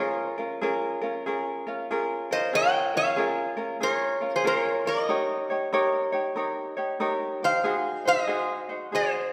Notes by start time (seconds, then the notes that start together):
Already playing: G#4 A#4 C#5
0.00 C#4 F4 A#4
0.38 C#4 F4 A#4
0.61 C#4 F4 G#4 A#4
1.02 C#4 F4 A#4
1.26 C#4 F4 G#4 A#4
1.67 C#4 F4 A#4
1.91 C#4 F4 G#4 A#4
2.31 C#4 F4 A#4 C5 D#5
2.53 C#4 F4 G#4 A#4 C#5 G5
2.94 C#4 F4 A#4 C#5 F5
3.16 C#4 F4 G#4 A#4
3.57 C#4 F4 A#4
3.80 C#4 F4 G#4 A#4 C#5
4.21 C#4 F4 A#4
4.36 G#4 C5
4.44 C#4 F4 G#4 A#4 C5
4.58 C#5
4.86 C#4 F4 A#4 D#5
5.09 D#4 G4 A#4 C#5
5.50 D#4 G4 C#5
5.73 D#4 G4 A#4 C#5
6.12 D#4 G4 C#5
6.36 D#4 G4 A#4 C#5
6.77 D#4 G4 C#5
7.00 D#4 G4 A#4 C#5
7.43 D#4 G4 C5 F5
7.64 D#4 F#4 G#4 C5
8.05 D#4 F#4 C5 D#5
8.27 D#4 F#4 G#4 C5
8.69 D#4 F#4 C5
8.92 D#4 F#4 G#4 C5